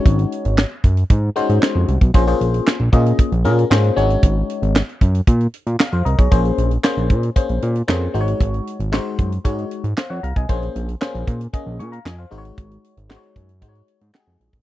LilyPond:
<<
  \new Staff \with { instrumentName = "FM electric piano" } { \time 4/4 \key bes \minor \tempo 4 = 115 << { r1 | r1 | r2. f''16 <c'' f''>16 <bes' ees'' bes''>16 <aes' des''>16~ | <aes' des''>16 r2. r8. |
r2. <c'' f''>16 <des'' ges''>16 <f'' bes''>16 <ees'' aes''>16~ | <ees'' aes''>16 r2 r16 <aes'' des'''>16 <f'' bes''>16 <ees'' aes''>16 <c'' f''>8 r16 | r1 | } \\ { <aes des' ees' ges' des''>4 r4. <aes des' ees' ges' c''>4~ <aes des' ees' ges' c''>16 r16 | <bes des' f' aes' c''>16 <bes des' f' aes' c''>4 r16 <bes des' f' aes' ees''>8. r16 <bes des' f' aes' bes'>8 <bes des' f' aes' c''>8 <aes des' ees' ges' des''>8~ | <aes des' ees' ges' des''>4 r2. | <bes des' aes' c''>8. r16 <bes des' aes' c''>8. r16 <bes des' aes' c''>8. r16 <bes des' aes' c''>8 <aes ees' ges' c'' des''>8~ |
<aes ees' ges' c'' des''>8. r16 <aes ees' ges' c''>8. r16 <aes ees' ges' des''>8. r4 r16 | <bes des' aes' c''>8. r16 <bes des' aes' c''>8. r16 <bes des' aes' ees''>8. r8. <aes ees' ges' c'' des''>8~ | <aes ees' ges' c'' des''>8. r16 <aes ees' ges' c'' des''>8. r16 <aes ees' ges' c'' des''>8. r16 <aes ees' ges' g' aes'>8. r16 | } >> }
  \new Staff \with { instrumentName = "Analog synth bass" } { \clef bass \time 4/4 \key bes \minor aes,,8 r16 aes,,8 r16 ges,8 aes,8 r16 aes,16 r16 f,16 c,16 ces,16 | bes,,8 bes,,8 r16 bes,,16 bes,8 r16 bes,,16 bes,8 aes,8 aes,,8 | aes,,8 r16 aes,,8 r16 ges,8 bes,8 r16 bes,16 r16 f,16 c,16 ces,16 | bes,,8 bes,,8 r16 bes,,16 bes,8 r16 bes,,16 bes,8 f,8 aes,,8 |
aes,,8 r16 aes,,8 r16 ges,8 aes,8 r16 aes,16 r16 f,16 c,16 ces,16 | bes,,8 bes,,8 r16 bes,,16 bes,8 r16 bes,,16 bes,8 f,8 aes,,8 | aes,,8 r16 aes,,8 r16 ges,8 aes,8 r16 aes,16 r16 f,16 bes,,16 a,,16 | }
  \new DrumStaff \with { instrumentName = "Drums" } \drummode { \time 4/4 <hh bd>16 hh16 hh16 hh16 <hc sn>8 <hh bd>16 hh16 <hh bd>8 hh16 hh16 <hc sn>8 hh16 <hh bd>16 | <hh bd>16 hh16 hh16 hh16 <hc sn>8 <hh bd>16 hh16 <hh bd>16 hh16 hh16 hh16 <hc sn>16 hh16 hh16 hh16 | <hh bd>8 hh16 hh16 <hc sn>16 hh16 <hh bd>16 hh16 <hh bd>16 hh16 hh16 hh16 <hc sn>16 hh16 hh16 <hh bd>16 | <hh bd>16 hh16 hh16 hh16 <hc sn>16 hh16 <hh bd>16 hh16 <hh bd>16 hh16 hh16 hh16 <hc sn>8 hh16 hh16 |
<hh bd>16 hh16 hh16 hh16 <hc sn>8 <hh bd>16 hh16 <hh bd>16 hh16 hh16 hh16 <hc sn>8 hh16 <hh bd>16 | <hh bd>16 hh16 hh16 hh16 <hc sn>16 hh16 <hh bd>16 hh16 <hh bd>8 hh16 hh16 <hc sn>8 hh16 hh16 | <hh bd>16 hh16 hh16 hh16 <hc sn>16 hh16 <hh bd>16 hh16 <hh bd>16 hh16 hh16 hh16 <hc sn>8 hh16 <hh bd>16 | }
>>